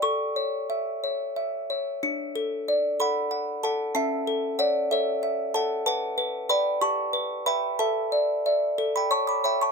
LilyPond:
\new Staff \with { instrumentName = "Music box" } { \time 6/8 \key d \major \tempo 4. = 61 << { cis'''4. r4. | r4. <fis'' b''>4 <fis'' a''>8 | <e'' a''>4 <d'' fis''>8 <cis'' e''>4 <fis'' a''>8 | <fis'' a''>4 <g'' b''>8 <a'' cis'''>4 <g'' b''>8 |
<e'' a''>4.~ <e'' a''>16 <g'' b''>16 <a'' cis'''>16 <b'' d'''>16 <g'' b''>16 <a'' cis'''>16 | } \\ { a'8 cis''8 e''8 cis''8 e''8 cis''8 | d'8 a'8 d''8 a'8 fis''8 a'8 | cis'8 a'8 cis''8 a'8 e''8 a'8 | b'8 b'8 <b' d''>8 g'8 b'8 <b' e''>8 |
a'8 d''8 <d'' e''>8 a'8 cis''8 <cis'' e''>8 | } >> }